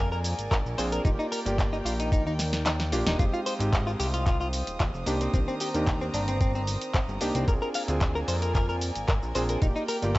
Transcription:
Already playing: analog synth bass F2, violin section A#3 A#4 D5 G#5, electric grand piano C4 D4 F4 G#4
0.12 clean electric guitar A#4, shaker
0.24 open hi-hat, shaker
0.39 analog synth bass G#1, closed hi-hat, shaker
0.51 analog synth bass G#1, clean electric guitar A#4, kick, clap, closed hi-hat, shaker
0.65 analog synth bass A#1, shaker
0.78 analog synth bass A#1, electric grand piano C4 D4 F4 G#4, clean electric guitar C5, open hi-hat, shaker
0.92 clean electric guitar A#4, closed hi-hat, shaker
1.05 analog synth bass D#1, electric grand piano A#3 F4 G4 D5, clean electric guitar D#4, violin section G5, kick, closed hi-hat, shaker
1.19 clean electric guitar D#4, shaker
1.32 clean electric guitar A#4, open hi-hat, shaker
1.45 analog synth bass G1, electric grand piano A#3 F4 G4 D5, closed hi-hat, shaker
1.58 kick, clap, closed hi-hat, shaker
1.73 clean electric guitar D#4, shaker
1.85 analog synth bass A#1, clean electric guitar F4, open hi-hat, shaker
2.00 clean electric guitar D#4, closed hi-hat, shaker
2.12 clean electric guitar D#4, kick, closed hi-hat, shaker
2.26 analog synth bass D#2, clean electric guitar D#4, shaker
2.39 snare, open hi-hat, shaker
2.53 snare, closed hi-hat, shaker
2.66 clean electric guitar D#4, snare, clap, closed hi-hat, shaker
2.80 snare, shaker
2.92 analog synth bass A#1, electric grand piano A#3 D4 F4 G4, clean electric guitar F4, open hi-hat, shaker
3.06 analog synth bass D#1, clean electric guitar D#4, snare, closed hi-hat, shaker
3.19 electric grand piano G#3 C4 D#4 G4, violin section F4 C5 D#6, clean electric guitar F4, kick, closed hi-hat, shaker
3.34 clean electric guitar F4, shaker
3.46 clean electric guitar C5, open hi-hat, shaker
3.59 analog synth bass G#1, electric grand piano G#3 C4 D#4 G4, closed hi-hat, shaker
3.73 kick, clap, closed hi-hat, shaker
3.87 clean electric guitar F4, shaker
4.00 analog synth bass C2, clean electric guitar G4, open hi-hat, shaker
4.14 clean electric guitar F4, closed hi-hat, shaker
4.26 clean electric guitar F4, kick, clap, closed hi-hat, shaker
4.41 clean electric guitar F4, shaker
4.53 open hi-hat, shaker
4.67 analog synth bass D#1, closed hi-hat, shaker
4.80 analog synth bass D#1, clean electric guitar F4, kick, clap, closed hi-hat, shaker
4.94 analog synth bass F1, shaker
5.06 analog synth bass C2, electric grand piano A#3 D4 D#4 G4, violin section C4 A#5, clean electric guitar D4, open hi-hat, shaker
5.21 clean electric guitar C4, closed hi-hat, shaker
5.33 analog synth bass C2, electric grand piano D#3 A#3 D4 G4, clean electric guitar C4, kick, closed hi-hat, shaker
5.48 clean electric guitar C4, shaker
5.60 clean electric guitar G4, open hi-hat, shaker
5.74 analog synth bass D#2, electric grand piano D#3 A#3 D4 G4, closed hi-hat, shaker
5.87 kick, clap, closed hi-hat, shaker
6.01 clean electric guitar C4, shaker
6.14 analog synth bass G1, clean electric guitar D4, open hi-hat, shaker
6.28 clean electric guitar C4, closed hi-hat, shaker
6.41 clean electric guitar C4, kick, closed hi-hat, shaker
6.55 clean electric guitar C4, shaker
6.67 open hi-hat, shaker
6.81 closed hi-hat, shaker
6.94 clean electric guitar C4, kick, clap, closed hi-hat, shaker
7.08 analog synth bass G1, shaker
7.21 analog synth bass C2, electric grand piano A#3 D4 D#4 G4, clean electric guitar D4, open hi-hat, shaker
7.35 analog synth bass C2, clean electric guitar C4, closed hi-hat, shaker
7.48 analog synth bass A#1, violin section A#3 A#4 D5 G#5, electric grand piano C4 D4 F4 G#4, clean electric guitar A#4, kick, closed hi-hat, shaker
7.62 clean electric guitar A#4, shaker
7.74 clean electric guitar F5, open hi-hat, shaker
7.88 analog synth bass D2, electric grand piano C4 D4 F4 G#4, closed hi-hat, shaker
8.01 kick, clap, closed hi-hat, shaker
8.15 clean electric guitar A#4, shaker
8.28 analog synth bass F2, clean electric guitar C5, open hi-hat, shaker
8.42 clean electric guitar A#4, closed hi-hat, shaker
8.55 clean electric guitar A#4, kick, clap, closed hi-hat, shaker
8.69 clean electric guitar A#4, shaker
8.81 open hi-hat, shaker
8.95 analog synth bass G#1, closed hi-hat, shaker
9.08 analog synth bass G#1, clean electric guitar A#4, kick, clap, closed hi-hat, shaker
9.22 analog synth bass A#1, shaker
9.35 analog synth bass A#1, electric grand piano C4 D4 F4 G#4, clean electric guitar C5, open hi-hat, shaker
9.49 clean electric guitar A#4, closed hi-hat, shaker
9.61 analog synth bass D#1, electric grand piano A#3 F4 G4 D5, clean electric guitar D#4, violin section D5 G5, kick, closed hi-hat, shaker
9.76 clean electric guitar D#4, shaker
9.88 clean electric guitar A#4, open hi-hat, shaker
10.02 analog synth bass G1, electric grand piano A#3 F4 G4 D5, closed hi-hat, shaker

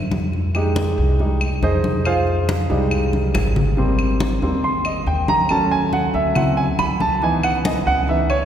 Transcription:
Already playing: upright bass F2
0.11 high conga
0.33 high conga
0.55 grand piano G#3 D#4 G4, high conga, claves
0.76 high conga
0.98 upright bass C2
1.19 grand piano G3 G#3 D#4, high conga
1.41 high conga, claves
1.62 upright bass F2, grand piano D#4 G#4 C5 D#5, high conga
1.84 high conga
2.05 grand piano F4 G#4 C5 F5, high conga, claves
2.27 high conga
2.49 high conga
2.70 upright bass C2, grand piano G3 G#3 D#4, high conga
2.91 high conga, claves
3.13 high conga
3.34 upright bass G#1, high conga, claves
3.56 low conga
3.77 grand piano G3 A#3 C4, high conga
3.99 high conga, claves
4.20 high conga
4.42 upright bass D#2, grand piano G3 A#3 C4, high conga
4.64 grand piano C6, high conga
4.85 grand piano D#5, high conga, claves
5.06 upright bass D#2, grand piano G5, high conga
5.28 grand piano A#5, high conga
5.49 grand piano F#3 A3 C#4 A5, high conga, claves
5.71 grand piano G#5, high conga
5.93 grand piano F#5, high conga
6.14 upright bass D2, grand piano E5
6.35 grand piano F#3 C4 E4 F#5, high conga, low conga, claves
6.57 grand piano G#5, high conga
6.79 upright bass C#2, grand piano B5, high conga, claves
7.00 grand piano A5, high conga
7.22 grand piano E3 B3 D#4 G#5, high conga
7.43 grand piano F#5, high conga, claves
7.65 grand piano D#5, high conga
7.86 upright bass C#2, grand piano F#5, high conga
8.08 grand piano E3 B3 D#4 E5, high conga
8.30 grand piano C#5, high conga, claves

